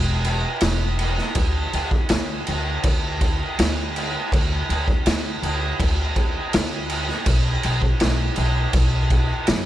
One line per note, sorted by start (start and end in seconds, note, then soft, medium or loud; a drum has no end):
0.00 0.43 E1 loud
0.24 crash medium
0.61 1.18 E1 medium
0.61 snare loud
0.61 crash medium
0.99 crash medium
1.18 snare soft
1.35 1.64 D2 medium
1.35 kick loud
1.35 crash medium
1.73 2.01 D2 medium
1.73 crash medium
1.91 kick medium
2.09 2.38 D2 medium
2.09 snare loud
2.09 crash medium
2.47 2.76 D2 medium
2.47 crash medium
2.83 3.40 D2 loud
2.83 kick loud
2.83 crash medium
3.21 kick medium
3.21 crash medium
3.59 4.14 D2 medium
3.59 snare loud
3.59 crash medium
3.96 crash medium
4.32 4.60 D2 loud
4.32 kick loud
4.32 crash medium
4.69 4.97 D2 medium
4.69 crash medium
4.88 kick medium
5.06 5.34 D2 medium
5.06 snare loud
5.06 crash medium
5.43 5.70 D2 medium
5.43 crash medium
5.80 6.36 D2 medium
5.80 kick loud
5.80 crash medium
6.16 kick medium
6.16 crash medium
6.53 7.10 D2 loud
6.53 snare loud
6.53 crash loud
6.90 crash medium
7.09 snare soft
7.26 7.54 B1 medium
7.26 kick loud
7.26 crash loud
7.63 7.92 B1 medium
7.63 crash medium
7.82 kick medium
8.00 8.29 B1 medium
8.00 snare loud
8.00 crash medium
8.36 8.65 B1 medium
8.36 crash medium
8.73 9.29 B1 loud
8.73 kick loud
8.73 crash medium
9.10 kick medium
9.10 crash medium
9.47 9.66 F#2 loud
9.47 snare loud
9.47 crash medium